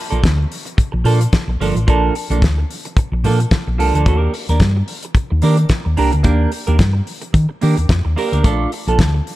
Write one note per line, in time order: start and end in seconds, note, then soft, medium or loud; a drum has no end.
0.10 0.21 A#1 medium
0.10 0.21 F3 soft
0.10 0.22 A#3 soft
0.10 0.22 D4 soft
0.10 0.22 A4 medium
0.10 closed hi-hat soft
0.23 0.44 D2 medium
0.23 muted clean electric guitar stroke soft
0.23 kick loud
0.23 snare loud
0.23 closed hi-hat medium
0.37 muted clean electric guitar stroke soft
0.52 open hi-hat medium
0.65 muted clean electric guitar stroke soft
0.65 closed hi-hat medium
0.77 muted clean electric guitar stroke soft
0.77 kick loud
0.77 closed hi-hat medium
0.92 1.03 A#1 medium
0.92 muted clean electric guitar stroke medium
1.04 1.25 A#2 medium
1.04 1.22 F3 medium
1.04 1.21 A#3 medium
1.04 1.20 D4 medium
1.04 1.20 A4 medium
1.04 open hi-hat medium
1.21 muted clean electric guitar stroke soft
1.21 closed hi-hat medium
1.33 muted clean electric guitar stroke soft
1.33 kick loud
1.33 snare loud
1.33 closed hi-hat medium
1.47 1.57 A#1 medium
1.47 muted clean electric guitar stroke soft
1.60 1.72 G1 medium
1.60 1.77 F3 medium
1.60 1.76 A#3 medium
1.60 1.75 D4 medium
1.60 1.74 A4 medium
1.60 open hi-hat medium
1.75 1.84 A1 medium
1.75 muted clean electric guitar stroke soft
1.75 closed hi-hat soft
1.87 2.08 A#1 medium
1.87 2.13 F3 medium
1.87 2.13 A#3 medium
1.87 2.13 D4 medium
1.87 2.14 A4 medium
1.87 kick loud
1.87 closed hi-hat medium
2.15 muted clean electric guitar stroke soft
2.15 open hi-hat medium
2.30 2.42 A#1 loud
2.30 2.42 F3 medium
2.30 2.42 A#3 medium
2.30 2.41 D4 medium
2.30 2.41 A4 medium
2.30 closed hi-hat soft
2.42 2.63 D2 medium
2.42 kick loud
2.42 snare loud
2.42 closed hi-hat medium
2.58 muted clean electric guitar stroke medium
2.71 open hi-hat medium
2.85 muted clean electric guitar stroke soft
2.85 closed hi-hat medium
2.97 muted clean electric guitar stroke soft
2.97 kick loud
2.97 closed hi-hat medium
3.12 3.25 A#1 medium
3.12 muted clean electric guitar stroke soft
3.24 3.44 A#2 medium
3.24 3.41 F3 medium
3.24 3.40 A#3 medium
3.24 3.39 D4 medium
3.24 3.39 A4 medium
3.24 open hi-hat medium
3.40 muted clean electric guitar stroke soft
3.40 closed hi-hat soft
3.51 muted clean electric guitar stroke soft
3.51 kick loud
3.51 snare loud
3.51 closed hi-hat medium
3.67 3.79 A#1 medium
3.67 muted clean electric guitar stroke soft
3.78 3.90 C2 medium
3.78 3.96 F3 medium
3.78 3.95 A#3 medium
3.78 3.95 D4 medium
3.78 3.93 A4 medium
3.78 open hi-hat medium
3.94 4.03 D2 medium
3.94 4.06 F3 soft
3.94 4.05 A#3 medium
3.94 4.06 D4 medium
3.94 4.05 A4 medium
3.94 closed hi-hat medium
4.06 4.27 D#2 loud
4.06 4.17 A3 medium
4.06 4.32 D4 medium
4.06 4.32 G4 medium
4.06 4.33 A#4 medium
4.06 kick loud
4.06 closed hi-hat medium
4.17 4.32 A#3 medium
4.34 muted clean electric guitar stroke soft
4.34 open hi-hat medium
4.49 4.58 D#2 loud
4.49 4.60 A#3 soft
4.49 4.60 D4 soft
4.49 4.60 G4 medium
4.49 4.60 A#4 medium
4.49 closed hi-hat medium
4.60 4.81 G2 loud
4.60 kick medium
4.60 snare loud
4.60 closed hi-hat medium
4.76 muted clean electric guitar stroke medium
4.88 open hi-hat medium
5.02 muted clean electric guitar stroke soft
5.02 closed hi-hat medium
5.15 muted clean electric guitar stroke soft
5.15 kick loud
5.15 closed hi-hat medium
5.30 5.40 D#2 medium
5.30 muted clean electric guitar stroke soft
5.42 5.64 D#3 medium
5.42 5.59 A#3 medium
5.42 5.58 D4 medium
5.42 5.57 G4 medium
5.42 5.56 A#4 medium
5.42 open hi-hat medium
5.57 muted clean electric guitar stroke soft
5.57 closed hi-hat medium
5.69 muted clean electric guitar stroke soft
5.69 kick medium
5.69 snare loud
5.69 closed hi-hat medium
5.85 5.95 D#2 medium
5.85 muted clean electric guitar stroke soft
5.97 6.09 C2 medium
5.97 6.14 A#3 medium
5.97 6.12 D4 medium
5.97 6.11 G4 medium
5.97 6.11 A#4 medium
5.97 open hi-hat medium
6.12 6.22 D2 medium
6.12 muted clean electric guitar stroke soft
6.12 closed hi-hat medium
6.23 6.45 D#2 medium
6.23 6.49 A#3 medium
6.23 6.50 D4 medium
6.23 6.50 G4 medium
6.23 6.50 A#4 medium
6.23 kick loud
6.23 closed hi-hat medium
6.52 muted clean electric guitar stroke soft
6.52 open hi-hat medium
6.67 6.77 D#2 loud
6.67 6.77 A#3 medium
6.67 6.77 D4 soft
6.67 6.78 G4 soft
6.67 6.78 A#4 medium
6.67 closed hi-hat soft
6.78 7.00 G2 medium
6.78 muted clean electric guitar stroke soft
6.78 kick loud
6.78 snare loud
6.78 closed hi-hat medium
6.93 muted clean electric guitar stroke soft
7.07 open hi-hat medium
7.22 muted clean electric guitar stroke soft
7.22 closed hi-hat medium
7.33 7.46 D#3 loud
7.33 muted clean electric guitar stroke soft
7.33 kick loud
7.33 closed hi-hat medium
7.49 muted clean electric guitar stroke soft
7.61 7.74 D#3 medium
7.61 7.79 A#3 medium
7.61 7.78 D4 medium
7.61 7.77 G4 medium
7.61 7.76 A#4 medium
7.61 open hi-hat medium
7.77 7.87 D#2 medium
7.77 muted clean electric guitar stroke soft
7.77 closed hi-hat soft
7.89 8.01 F2 medium
7.89 muted clean electric guitar stroke soft
7.89 kick loud
7.89 snare loud
7.89 closed hi-hat medium
8.05 8.14 D#2 medium
8.05 muted clean electric guitar stroke soft
8.16 8.33 A#3 medium
8.16 8.32 D4 medium
8.16 8.32 G4 medium
8.16 8.31 A#4 medium
8.16 open hi-hat medium
8.32 8.41 D2 medium
8.32 8.43 A#3 soft
8.32 8.43 D4 medium
8.32 8.43 G4 medium
8.32 8.43 A#4 medium
8.32 closed hi-hat medium
8.43 8.65 A#1 medium
8.43 8.69 A3 medium
8.43 8.70 D4 medium
8.43 8.70 F4 medium
8.43 8.70 A4 medium
8.43 kick loud
8.43 closed hi-hat medium
8.72 muted clean electric guitar stroke soft
8.72 open hi-hat medium
8.87 8.96 A#1 loud
8.87 8.98 A3 soft
8.87 8.99 D4 soft
8.87 8.98 F4 soft
8.87 8.98 A4 medium
8.87 closed hi-hat soft
8.99 9.19 D2 medium
8.99 muted clean electric guitar stroke soft
8.99 kick loud
8.99 snare loud
8.99 closed hi-hat medium
9.14 muted clean electric guitar stroke soft
9.27 open hi-hat medium